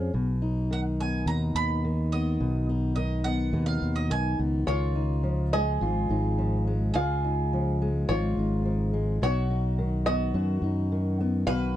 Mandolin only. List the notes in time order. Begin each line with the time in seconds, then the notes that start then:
Already playing: F5
0.73 F#5
1.00 G#5
1.27 A#5
1.56 B5
2.12 D#5
2.96 D#5
3.24 F#5
3.66 F5
3.96 D#5
4.11 G#5
4.68 F4
5.53 G#4
6.94 G#4
8.09 F4
9.23 F#4
10.07 F#4
11.47 B4